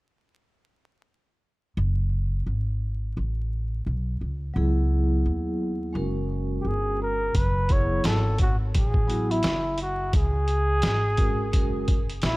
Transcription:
1.77 upright bass F#1
2.46 upright bass G#1
3.17 upright bass A1
3.86 upright bass B1
4.21 upright bass C#2
4.54 upright bass C#2, vibraphone F#3 B3 E4 G#4
5.25 upright bass D#2
5.93 upright bass F#1, vibraphone G#3 C#4 F#4 A#4
6.61 upright bass G1, flugelhorn G4
6.67 flugelhorn G#4
7.02 flugelhorn A#4
7.35 upright bass F#1, flugelhorn B4, kick, closed hi-hat
7.69 vibraphone F#3 B3 E4 G#4, flugelhorn C#5, kick, closed hi-hat
8.04 upright bass G#1, flugelhorn A4, snare, closed hi-hat
8.39 flugelhorn F#4, kick, closed hi-hat
8.75 upright bass A1, flugelhorn G#4, kick, closed hi-hat
8.94 kick
9.08 vibraphone F#3 B3 E4 F#4, closed hi-hat
9.31 flugelhorn E4, closed hi-hat
9.43 upright bass F#1, snare, closed hi-hat
9.78 flugelhorn F#4, closed hi-hat
10.13 upright bass C#2, flugelhorn G#4, kick, closed hi-hat
10.48 closed hi-hat
10.82 upright bass G#1, snare, closed hi-hat
11.17 vibraphone G#3 C#4 F#4 A#4, kick, closed hi-hat
11.51 upright bass F#1, vibraphone G#3 C#4 F#4 A#4, kick, closed hi-hat
11.88 kick, closed hi-hat
12.10 closed hi-hat
12.22 upright bass A#1, flugelhorn E4, snare, closed hi-hat

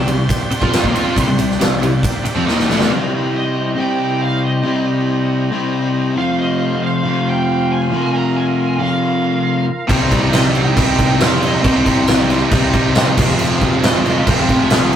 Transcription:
Already playing: tonewheel organ C4 G4 D5
0.07 picked electric bass C2, overdriven electric guitar C3 G3, lead electric guitar C6, ride
0.29 kick, ride
0.51 muted distorted electric guitar stroke, muted overdriven electric guitar stroke, muted picked electric bass stroke, ride
0.62 picked electric bass F2, overdriven electric guitar F3 C4 F4, kick
0.73 snare, ride
0.83 picked electric bass D#2, overdriven electric guitar D#3 A#3, kick
0.94 picked electric bass F2, overdriven electric guitar F3 C4 F4, ride
1.16 picked electric bass C2, overdriven electric guitar C3 G3, kick, ride
1.26 picked electric bass C2, overdriven electric guitar C3 G3
1.37 picked electric bass C2, overdriven electric guitar C3 G3, ride
1.50 snare
1.59 picked electric bass C2, overdriven electric guitar C3 G3, snare, ride
1.81 picked electric bass C2, overdriven electric guitar C3 G3, ride
2.03 kick, ride
2.23 muted distorted electric guitar stroke, muted overdriven electric guitar stroke, muted picked electric bass stroke, ride
2.35 picked electric bass F2, overdriven electric guitar F3 C4
2.46 picked electric bass D#2, overdriven electric guitar D#3 A#3 D#4, snare
2.59 snare
2.69 picked electric bass D2, overdriven electric guitar D3 A3 D4, snare
2.81 snare
2.90 overdriven electric guitar C3 G3 C4, tonewheel organ C4 G4 D#5
3.37 lead electric guitar D#5
3.76 overdriven electric guitar C3 G3 C4, lead electric guitar G5
4.22 lead electric guitar F5
4.44 lead electric guitar D#5
4.63 overdriven electric guitar C3 G3 C4
5.51 overdriven electric guitar C3 G3 C4
6.15 overdriven electric guitar F2 C3 F3, tonewheel organ F4 C5 F5, lead electric guitar F5
6.40 lead electric guitar D#5
6.84 lead electric guitar F5
7.03 overdriven electric guitar F2 C3 F3
7.29 lead electric guitar G5
7.72 lead electric guitar G#5
7.91 overdriven electric guitar F2 C3 F3, tonewheel organ A#4
8.17 lead electric guitar A#5
8.36 lead electric guitar G#5
8.79 overdriven electric guitar F2 C3 F3, lead electric guitar F5
9.88 picked electric bass C2, overdriven electric guitar C3 G3 C4, tonewheel organ C4 G4 D#5, distorted electric guitar D#4, kick, crash
10.11 picked electric bass C2, kick, crash
10.32 picked electric bass C2, lead electric guitar C4 D#5, snare, crash
10.45 snare
10.55 lead electric guitar D#4 G5, crash
10.76 picked electric bass C2, overdriven electric guitar C3 G3 C4, distorted electric guitar D#4, kick, crash
10.98 picked electric bass C2, distorted electric guitar C3 G3 C4, kick, crash
11.19 picked electric bass F2, distorted electric guitar C3 G3 C4, lead electric guitar F5, snare, crash
11.24 lead electric guitar C4
11.43 lead electric guitar C4 D#5, crash
11.63 picked electric bass C2, overdriven electric guitar C3 G3 C4, distorted electric guitar D#4, kick, crash
11.86 picked electric bass G1, kick, crash
12.08 picked electric bass C2, snare, crash
12.20 snare
12.30 snare, crash
12.51 picked electric bass C2, overdriven electric guitar C3 G3 C4, distorted electric guitar D#4, kick, crash
12.72 picked electric bass C2, distorted electric guitar C3 G3 C4, kick, crash
12.94 distorted electric guitar C3 G3 C4, picked electric bass C3, snare, crash
13.16 picked electric bass F1, overdriven electric guitar F2 C3 F3, distorted electric guitar G#3 C4, tonewheel organ F4 C5 F5, kick, crash
13.39 picked electric bass F1, crash
13.61 picked electric bass F1, kick, crash
13.82 picked electric bass F1, lead electric guitar G#3 D#5, snare, crash
14.04 overdriven electric guitar F2 C3 F3, distorted electric guitar G#3 C4, snare, crash
14.26 picked electric bass F1, distorted electric guitar F2 C3 F3, lead electric guitar C4 G5, kick, crash
14.48 picked electric bass F1, distorted electric guitar F2 C3 F3, kick, crash
14.59 lead electric guitar F4 G#5
14.70 picked electric bass A#1, snare, crash
14.93 lead electric guitar G4, crash

